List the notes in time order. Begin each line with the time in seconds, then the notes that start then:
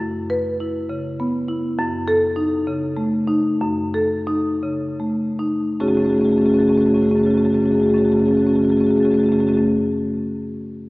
0.00 F#2
0.30 B4
0.60 E4
0.89 C#3
1.20 B3
1.49 E4
1.79 F#2
2.08 A4
2.36 D#4
2.67 C#3
2.97 A3
3.27 D#4
3.61 F#2
3.94 A4
4.27 D#4
4.63 C#3
5.00 A3
5.39 D#4
5.80 F#2 C#3 A3 C#4 F#4 G#4
5.88 F#2 C#3 A3 C#4 F#4 G#4
5.95 A3 C#4 F#4 G#4
6.00 F#2 C#3 F#4 G#4
6.05 A3 C#4
6.09 F#2 C#3 C#4 F#4 G#4
6.15 A3 F#4 G#4
6.19 F#2 C#3 A3 C#4
6.24 F#4 G#4
6.28 F#2 C#3 C#4 G#4
6.33 C#3 A3 F#4
6.38 F#2 A3 C#4 F#4 G#4
6.45 F#2 C#3 C#4 G#4
6.49 A3 F#4 G#4
6.54 C#3 C#4 F#4
6.58 F#2 A3 C#4 G#4
6.63 C#3 F#4
6.67 F#2 A3 C#4 G#4
6.72 C#3 F#4 G#4
6.76 F#2 C#3 A3 C#4
6.81 F#4 G#4
6.86 F#2 C#3 A3 C#4 F#4 G#4
6.94 F#2 C#3 A3 C#4 F#4 G#4
7.01 A3 C#4 F#4 G#4
7.06 F#2 C#3 F#4
7.10 A3 C#4 G#4
7.16 F#2 C#3 C#4 F#4 G#4
7.22 F#2 A3 G#4
7.26 C#3 C#4 F#4
7.30 A3 F#4 G#4
7.35 F#2 C#3 C#4 G#4
7.40 A3 F#4
7.45 F#2 C#3 C#4 G#4
7.49 A3 F#4 G#4
7.54 F#2 C#3 A3 C#4
7.58 F#4 G#4
7.63 F#2 C#3 A3 C#4 F#4
7.67 C#4 G#4
7.72 F#2 C#3 A3 F#4 G#4
7.78 C#3 A3 C#4 F#4
7.83 F#2 C#4 G#4
7.88 C#3 A3 F#4 G#4
7.94 F#2 C#4 F#4
7.98 C#3 A3 C#4 G#4
8.04 F#2 C#3 F#4 G#4
8.09 A3 C#4 F#4 G#4
8.14 F#2 C#3 A3
8.19 F#2 C#4 F#4 G#4
8.24 C#3 A3 F#4 G#4
8.28 F#2 C#4
8.32 C#3 A3 F#4 G#4
8.37 C#3 C#4 G#4
8.41 F#2 A3 F#4
8.47 C#3 C#4 F#4 G#4
8.51 F#2 A3
8.55 C#3 C#4 F#4 G#4
8.61 F#2 A3 C#4 F#4 G#4
8.69 F#2 C#3 A3 F#4 G#4
8.73 C#4
8.77 C#3 A3 C#4 F#4 G#4
8.81 F#2 G#4
8.86 C#3 A3 C#4 F#4
8.91 F#2 G#4
8.95 C#3 A3 C#4 F#4 G#4
9.01 F#2 F#4 G#4
9.05 C#3 A3 C#4
9.10 F#2 A3 F#4 G#4
9.14 C#3 C#4 F#4
9.19 F#2 G#4
9.23 C#3 A3 C#4 F#4 G#4
9.29 F#2 C#3 A3 C#4 F#4 G#4
9.38 F#2 A3 C#4 F#4 G#4
9.43 F#2 C#3 G#4
9.48 A3 C#4 F#4
9.52 C#3 F#4 G#4
9.57 F#2 A3 C#4